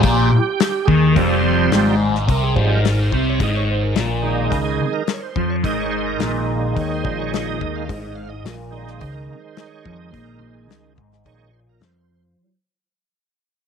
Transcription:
0.03 picked electric bass A#1, distorted electric guitar A#2, tonewheel organ G4, kick, open hi-hat
0.30 tonewheel organ G4
0.60 snare, open hi-hat
0.85 picked electric bass D#2, distorted electric guitar D#3, tonewheel organ G#4, kick
1.12 picked electric bass F1, distorted electric guitar F2, tonewheel organ F3 A#4
1.16 tonewheel organ G3 C4, kick, open hi-hat
1.29 tonewheel organ C5
1.71 picked electric bass G#1, distorted electric guitar G#2, snare, open hi-hat
2.15 snare
2.28 picked electric bass C2, distorted electric guitar C3, tonewheel organ A#4, kick, open hi-hat
2.43 tonewheel organ G#4
2.56 picked electric bass G#1, distorted electric guitar G#2, tonewheel organ F3 G3 C4, kick
2.72 tonewheel organ A#4
2.85 snare, open hi-hat
3.02 tonewheel organ C5
3.12 picked electric bass C2, distorted electric guitar C3, kick
3.29 tonewheel organ C#5
3.40 picked electric bass G#1, distorted electric guitar G#2, tonewheel organ D#5, kick, open hi-hat
3.56 tonewheel organ C#5
3.71 tonewheel organ C5
3.83 tonewheel organ A#4
3.95 picked electric bass A#1, distorted electric guitar A#2, snare, open hi-hat
4.22 tonewheel organ D#3 G#3 D#4
4.50 picked electric bass C#2, distorted electric guitar C#3, tonewheel organ A#4, kick, open hi-hat
4.64 tonewheel organ G#4
4.93 tonewheel organ A#4
5.08 snare, open hi-hat
5.14 tonewheel organ C#5
5.22 tonewheel organ C5
5.36 picked electric bass F2, distorted electric guitar F3, kick
5.50 tonewheel organ C#5
5.63 picked electric bass G#1, distorted electric guitar G#2, tonewheel organ D#3 G#3 D#4 D#5, kick, open hi-hat
5.80 tonewheel organ C#5
5.91 tonewheel organ C5
6.06 tonewheel organ A#4
6.20 picked electric bass A#1, distorted electric guitar A#2, snare, open hi-hat
6.76 picked electric bass D#2, distorted electric guitar D#3, kick, open hi-hat
6.80 tonewheel organ C#5
6.93 tonewheel organ C5
7.05 picked electric bass A#1, distorted electric guitar A#2, kick
7.20 tonewheel organ C#5
7.34 snare, open hi-hat
7.47 tonewheel organ D#5
7.59 picked electric bass D#2, distorted electric guitar D#3, kick
7.76 tonewheel organ F5
7.86 picked electric bass G#1, distorted electric guitar G#2, tonewheel organ D#5, kick
7.90 open hi-hat
8.01 tonewheel organ D#5
8.15 tonewheel organ F5
8.29 tonewheel organ D#5
8.45 picked electric bass A#1, distorted electric guitar A#2, snare, open hi-hat
8.71 tonewheel organ D#3 G#3 D#4
8.88 snare
8.99 picked electric bass C#2, distorted electric guitar C#3, tonewheel organ C5, kick, open hi-hat
9.12 tonewheel organ A#4
9.40 tonewheel organ C5
9.57 snare, open hi-hat
9.66 tonewheel organ C#5
9.85 picked electric bass F2, distorted electric guitar F3, kick
9.95 tonewheel organ D#5
10.10 picked electric bass A#1, distorted electric guitar A#2, tonewheel organ D#3 G#3 D#4 C5, kick, open hi-hat
10.24 tonewheel organ A#4
10.39 picked electric bass A#1, distorted electric guitar A#2, tonewheel organ C5
10.55 tonewheel organ G#4
10.69 picked electric bass C#2, distorted electric guitar C#3, snare, open hi-hat
10.97 picked electric bass G#1, distorted electric guitar G#2, kick
11.13 snare
11.25 picked electric bass A#1, distorted electric guitar A#2, tonewheel organ D#3 G#3 D#4 C#5, kick, open hi-hat
11.53 tonewheel organ C5
11.69 tonewheel organ A#4
11.81 picked electric bass F2, distorted electric guitar F3, tonewheel organ C5, snare, open hi-hat
11.98 tonewheel organ C5

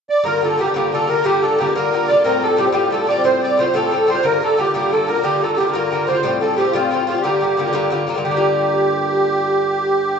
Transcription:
0.10 accordion D5
0.24 bouzouki G2 D3 A#3 F4, accordion A#4
0.41 bouzouki G2 D3 A#3 F4, accordion A4
0.58 bouzouki G2 D3 A#3 F4, accordion G4
0.66 bouzouki D3 A#3 F4
0.74 bouzouki G2 D3 A#3 F4, accordion G4
0.92 bouzouki G2 D3 A#3 F4, accordion A4
1.07 bouzouki G2 D3 A#3 F4, accordion A#4
1.15 bouzouki D3 A#3 F4
1.24 bouzouki G2 D3 A#3 F4, accordion G4
1.42 bouzouki G2 D3 A#3 F4, accordion A4
1.59 bouzouki G2 D3 A#3 F4, accordion G4
1.67 bouzouki D3 A#3 F4
1.75 bouzouki G2 D3 A#3 F4, accordion A#4
1.92 bouzouki G2 D3 A#3 F4
2.08 bouzouki G2 D3 A#3 F4, accordion D5
2.16 bouzouki D3 A#3 F4
2.24 bouzouki A2 G3 C4 F4, accordion A#4
2.42 bouzouki A2 G3 C4 F4, accordion A4
2.57 bouzouki A2 G3 C4 F4, accordion G4
2.64 bouzouki G3 C4 F4
2.72 bouzouki A2 G3 C4 F4, accordion G4
2.91 bouzouki A2 G3 C4 F4, accordion A4
3.07 bouzouki A2 G3 C4 F4, accordion D5
3.16 bouzouki G3 C4 F4
3.24 bouzouki A2 G3 C4 F4, accordion C5
3.42 bouzouki A2 G3 C4 F4, accordion D5
3.57 bouzouki A2 G3 C4 F4, accordion C5
3.65 bouzouki G3 C4 F4
3.74 bouzouki A2 G3 C4 F4, accordion A4
3.91 bouzouki A2 G3 C4 F4
4.07 bouzouki A2 G3 C4 F4, accordion C5
4.14 bouzouki G3 C4 F4
4.23 bouzouki G2 D3 A#3 F4, accordion A#4
4.40 bouzouki G2 D3 A#3 F4, accordion A4
4.57 bouzouki G2 D3 A#3 F4, accordion G4
4.65 bouzouki D3 A#3 F4
4.74 bouzouki G2 D3 A#3 F4, accordion G4
4.91 bouzouki G2 D3 A#3 F4, accordion A4
5.07 bouzouki G2 D3 A#3 F4, accordion A#4
5.15 bouzouki D3 A#3 F4
5.22 bouzouki G2 D3 A#3 F4, accordion G4
5.41 bouzouki G2 D3 A#3 F4, accordion A4
5.52 accordion A4
5.56 bouzouki G2 D3 A#3 F4, accordion G4
5.65 bouzouki D3 A#3 F4
5.72 bouzouki G2 D3 A#3 F4, accordion A#4
5.91 bouzouki G2 D3 A#3 F4
6.07 bouzouki G2 D3 A#3 F4, accordion C5
6.15 bouzouki D3 A#3 F4
6.23 bouzouki A2 G3 C4 F4
6.41 bouzouki A2 G3 C4 F4, accordion A4
6.57 bouzouki A2 G3 C4 F4, accordion G4
6.65 bouzouki G3 C4 F4
6.72 bouzouki A2 G3 C4, accordion F4
6.76 bouzouki F4
6.91 bouzouki A2 G3 C4 F4
7.06 bouzouki A2 G3 C4, accordion F4
7.10 bouzouki F4
7.15 bouzouki G3 C4 F4
7.21 bouzouki G2 D3 A#3, accordion G4
7.25 bouzouki F4
7.41 bouzouki G2 D3 A#3 F4
7.57 bouzouki G2 D3 A#3 F4
7.66 bouzouki D3 A#3 F4
7.73 bouzouki G2 D3 A#3 F4
7.90 bouzouki G2 D3 A#3 F4
8.07 bouzouki G2 D3 A#3 F4
8.14 bouzouki G2 D3 A#3 F4
8.24 bouzouki D3, accordion G4
8.31 bouzouki A#3
8.37 bouzouki F4

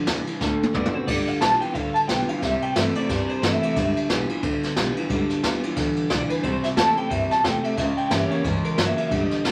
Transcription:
0.06 upright bass D2, clean electric guitar G2 E3, steel-string acoustic guitar C3, snare, ride
0.27 clean electric guitar G2 E3, muted upright bass stroke, ride
0.41 upright bass D2, steel-string acoustic guitar D3, clean electric guitar D3 A3, kick, snare
0.61 muted upright bass stroke, high tom
0.73 upright bass F#1, steel-string acoustic guitar D3 A3 C4 F#4, clean electric guitar D3 B3 D5, kick, mid tom
0.85 mid tom
0.93 clean electric guitar D3 B3 C5, steel-string acoustic guitar C4 F#4, muted upright bass stroke
1.07 upright bass G1, clean electric guitar G2 D3 D5, steel-string acoustic guitar G3, kick, crash
1.27 clean electric guitar F5, muted upright bass stroke, ride
1.40 upright bass B1, clean electric guitar G2 E3 A5, steel-string acoustic guitar G3 B3 F4, snare, ride
1.61 clean electric guitar G2 E3 G5, steel-string acoustic guitar B3 F4, muted upright bass stroke, ride
1.74 upright bass D2, clean electric guitar G2 D3 F5, steel-string acoustic guitar D3, kick, ride
1.94 clean electric guitar A5, ride
2.08 upright bass B1, clean electric guitar G2 E3 G5, steel-string acoustic guitar G3 B3 F4, snare, ride
2.28 clean electric guitar G2 E3 F5, steel-string acoustic guitar B3 F4, muted upright bass stroke, ride
2.42 upright bass C2, steel-string acoustic guitar C3, clean electric guitar C3 G3 E5, kick, snare, ride
2.62 clean electric guitar G5, ride
2.75 upright bass G2, clean electric guitar C3 A3 E5, steel-string acoustic guitar E3 A#3 C4 E4, snare, ride
2.95 clean electric guitar C3 A3 D5, steel-string acoustic guitar C4 E4, ride
3.09 steel-string acoustic guitar G2, upright bass G2, clean electric guitar C3 G3, kick, snare, ride
3.29 clean electric guitar C5, ride
3.42 upright bass G2, clean electric guitar C3 A3 E5, steel-string acoustic guitar E3 A#3 C4 E4, snare, ride
3.62 clean electric guitar C3 A3, muted upright bass stroke, ride
3.76 upright bass G1, clean electric guitar G2 D3, steel-string acoustic guitar G3, kick, snare, ride
3.96 ride
4.09 upright bass B1, clean electric guitar G2 E3, steel-string acoustic guitar G3 B3 F4, snare, ride
4.28 clean electric guitar G2 E3, steel-string acoustic guitar B3 F4, ride
4.42 upright bass D2, clean electric guitar G2 D3, steel-string acoustic guitar D3, kick, ride
4.63 snare, ride
4.76 upright bass B1, clean electric guitar G2 E3, steel-string acoustic guitar G3 B3 F4, snare, ride
4.95 clean electric guitar G2 E3, steel-string acoustic guitar B3 F4, muted upright bass stroke, ride
5.09 upright bass G1, clean electric guitar G2 D3, steel-string acoustic guitar G3, kick, ride
5.29 muted upright bass stroke, snare, ride
5.42 upright bass D2, clean electric guitar G2 E3, steel-string acoustic guitar G3 B3 F4, snare, ride
5.63 clean electric guitar G2 E3, steel-string acoustic guitar B3 F4, ride
5.76 upright bass D2, clean electric guitar G2 D3, steel-string acoustic guitar E3, kick, snare, ride
5.96 ride
6.10 upright bass B1, clean electric guitar G2 E3 D5, steel-string acoustic guitar D3, kick, snare, ride
6.29 clean electric guitar G2 E3 B4, muted upright bass stroke, ride
6.43 upright bass C2, steel-string acoustic guitar C3, clean electric guitar C3 G3 C5, kick, ride
6.63 clean electric guitar E5, muted upright bass stroke, snare, ride
6.76 upright bass E2, clean electric guitar C3 A3 A5, steel-string acoustic guitar E3 A#3 C4 E4, snare, ride
6.96 clean electric guitar C3 A3 G5, steel-string acoustic guitar C4 E4, ride
7.09 upright bass G2, steel-string acoustic guitar A#2, clean electric guitar C3 G3 E5, kick, ride
7.30 clean electric guitar A5, muted upright bass stroke, snare, ride
7.43 upright bass E2, clean electric guitar C3 A3 G5, steel-string acoustic guitar C3, snare, ride
7.63 clean electric guitar C3 A3 E5, ride
7.77 upright bass C#2, clean electric guitar C#3 G#3 E5, steel-string acoustic guitar C#3, kick, snare, ride
7.97 clean electric guitar G5, muted upright bass stroke, ride
8.10 upright bass G2, clean electric guitar C#3 A#3 E5, steel-string acoustic guitar E3 A#3 C#4 G4, snare, ride
8.30 clean electric guitar C#3 A#3 C#5, ride
8.44 upright bass G2, clean electric guitar C#3 G#3, steel-string acoustic guitar E3, kick, ride
8.64 clean electric guitar A#4, muted upright bass stroke, ride
8.77 upright bass G2, clean electric guitar C#3 A#3 E5, steel-string acoustic guitar F#3, snare, ride
8.97 clean electric guitar C#3 A#3, ride
9.10 upright bass G1, clean electric guitar G2 D3, steel-string acoustic guitar G3, kick, ride
9.22 clean electric guitar D#5
9.30 muted upright bass stroke, snare, ride
9.44 upright bass B1, clean electric guitar G2 E3, steel-string acoustic guitar G3 B3 F4, snare, ride

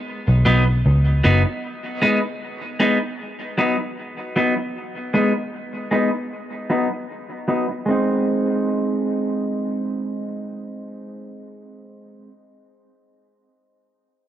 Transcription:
0.28 picked electric bass B1
0.45 picked electric bass B1, clean electric guitar F#3 B3 D#4
0.86 picked electric bass C#2
1.24 picked electric bass F#1, clean electric guitar F#3 B3 D#4
1.45 muted clean electric guitar stroke
2.02 clean electric guitar G#3 B3 D#4
2.80 clean electric guitar G#3 B3 D#4
3.58 clean electric guitar F#3 B3 D#4
4.36 clean electric guitar F#3 B3 D#4
4.56 muted clean electric guitar stroke
5.14 clean electric guitar G#3 B3 D#4
5.91 clean electric guitar G#3 B3 D#4
6.70 clean electric guitar F#3 B3 D#4
7.48 clean electric guitar F#3 B3 D#4
7.68 muted clean electric guitar stroke
7.86 clean electric guitar G#3 C4
7.91 clean electric guitar D#4

